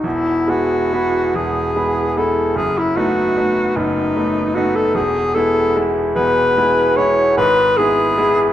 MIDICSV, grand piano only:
0, 0, Header, 1, 2, 480
1, 0, Start_track
1, 0, Key_signature, 4, "major"
1, 0, Tempo, 860832
1, 26, Time_signature, 6, 3, 24, 8
1, 985, Tempo, 798935
1, 5048, End_track
2, 0, Start_track
2, 0, Title_t, "Grand piano"
2, 0, Program_c, 0, 0
2, 0, Control_c, 0, 64, 127
2, 21, Note_on_c, 0, 28, 47
2, 21, Note_on_c, 0, 40, 46
2, 36, Control_c, 0, 64, 0
2, 131, Control_c, 0, 64, 127
2, 262, Note_off_c, 0, 40, 0
2, 263, Note_off_c, 0, 28, 0
2, 263, Note_on_c, 0, 56, 42
2, 265, Note_on_c, 0, 59, 38
2, 271, Note_on_c, 0, 64, 43
2, 491, Note_off_c, 0, 56, 0
2, 492, Note_off_c, 0, 59, 0
2, 495, Note_off_c, 0, 64, 0
2, 516, Note_on_c, 0, 56, 35
2, 519, Note_on_c, 0, 64, 45
2, 520, Note_on_c, 0, 59, 41
2, 732, Note_off_c, 0, 56, 0
2, 734, Note_off_c, 0, 59, 0
2, 734, Note_off_c, 0, 64, 0
2, 750, Note_on_c, 0, 40, 45
2, 752, Note_on_c, 0, 28, 47
2, 976, Note_off_c, 0, 40, 0
2, 977, Note_off_c, 0, 28, 0
2, 980, Note_on_c, 0, 56, 38
2, 983, Note_on_c, 0, 59, 37
2, 984, Note_on_c, 0, 64, 40
2, 1200, Note_off_c, 0, 56, 0
2, 1202, Note_off_c, 0, 59, 0
2, 1202, Note_off_c, 0, 64, 0
2, 1227, Note_on_c, 0, 56, 38
2, 1228, Note_on_c, 0, 59, 40
2, 1230, Note_on_c, 0, 64, 41
2, 1443, Note_off_c, 0, 56, 0
2, 1444, Note_off_c, 0, 59, 0
2, 1445, Note_off_c, 0, 64, 0
2, 1460, Note_on_c, 0, 42, 47
2, 1461, Note_on_c, 0, 30, 45
2, 1477, Control_c, 0, 64, 0
2, 1559, Control_c, 0, 64, 127
2, 1699, Note_off_c, 0, 30, 0
2, 1699, Note_off_c, 0, 42, 0
2, 1703, Note_on_c, 0, 57, 43
2, 1708, Note_on_c, 0, 59, 42
2, 1710, Note_on_c, 0, 63, 45
2, 1923, Note_off_c, 0, 57, 0
2, 1926, Note_off_c, 0, 59, 0
2, 1927, Note_off_c, 0, 63, 0
2, 1945, Note_on_c, 0, 57, 39
2, 1945, Note_on_c, 0, 59, 38
2, 1952, Note_on_c, 0, 63, 40
2, 2161, Note_off_c, 0, 57, 0
2, 2162, Note_off_c, 0, 59, 0
2, 2166, Note_off_c, 0, 63, 0
2, 2182, Note_on_c, 0, 42, 47
2, 2184, Note_on_c, 0, 30, 46
2, 2413, Note_off_c, 0, 42, 0
2, 2415, Note_off_c, 0, 30, 0
2, 2423, Note_on_c, 0, 57, 37
2, 2427, Note_on_c, 0, 59, 39
2, 2428, Note_on_c, 0, 63, 41
2, 2634, Note_off_c, 0, 57, 0
2, 2637, Note_off_c, 0, 59, 0
2, 2638, Note_off_c, 0, 63, 0
2, 2663, Note_on_c, 0, 57, 40
2, 2664, Note_on_c, 0, 59, 40
2, 2669, Note_on_c, 0, 63, 48
2, 2875, Note_off_c, 0, 57, 0
2, 2876, Note_off_c, 0, 59, 0
2, 2878, Note_off_c, 0, 63, 0
2, 2896, Note_on_c, 0, 40, 49
2, 2897, Note_on_c, 0, 28, 50
2, 2908, Control_c, 0, 64, 0
2, 3006, Control_c, 0, 64, 127
2, 3131, Note_off_c, 0, 28, 0
2, 3131, Note_off_c, 0, 40, 0
2, 3141, Note_on_c, 0, 56, 44
2, 3143, Note_on_c, 0, 59, 43
2, 3144, Note_on_c, 0, 64, 50
2, 3357, Note_off_c, 0, 56, 0
2, 3358, Note_off_c, 0, 59, 0
2, 3359, Note_off_c, 0, 64, 0
2, 3384, Note_on_c, 0, 56, 40
2, 3385, Note_on_c, 0, 59, 44
2, 3389, Note_on_c, 0, 64, 43
2, 3601, Note_off_c, 0, 56, 0
2, 3602, Note_off_c, 0, 59, 0
2, 3604, Note_off_c, 0, 64, 0
2, 3622, Note_on_c, 0, 28, 51
2, 3623, Note_on_c, 0, 40, 50
2, 3861, Note_off_c, 0, 28, 0
2, 3862, Note_off_c, 0, 40, 0
2, 3871, Note_on_c, 0, 56, 46
2, 3873, Note_on_c, 0, 59, 46
2, 3874, Note_on_c, 0, 64, 43
2, 4090, Note_off_c, 0, 56, 0
2, 4090, Note_off_c, 0, 59, 0
2, 4091, Note_off_c, 0, 64, 0
2, 4116, Note_on_c, 0, 56, 42
2, 4118, Note_on_c, 0, 59, 43
2, 4119, Note_on_c, 0, 64, 50
2, 4331, Note_off_c, 0, 56, 0
2, 4332, Note_off_c, 0, 59, 0
2, 4332, Note_off_c, 0, 64, 0
2, 4352, Note_on_c, 0, 32, 49
2, 4355, Note_on_c, 0, 44, 60
2, 4364, Control_c, 0, 64, 0
2, 4448, Control_c, 0, 64, 127
2, 4585, Note_off_c, 0, 32, 0
2, 4586, Note_off_c, 0, 44, 0
2, 4598, Note_on_c, 0, 56, 46
2, 4603, Note_on_c, 0, 59, 45
2, 4603, Note_on_c, 0, 64, 53
2, 4809, Note_off_c, 0, 56, 0
2, 4811, Note_off_c, 0, 59, 0
2, 4812, Note_off_c, 0, 64, 0
2, 4835, Note_on_c, 0, 56, 49
2, 4837, Note_on_c, 0, 59, 48
2, 4841, Note_on_c, 0, 64, 50
2, 5045, Note_off_c, 0, 56, 0
2, 5046, Note_off_c, 0, 59, 0
2, 5048, Note_off_c, 0, 64, 0
2, 5048, End_track
0, 0, End_of_file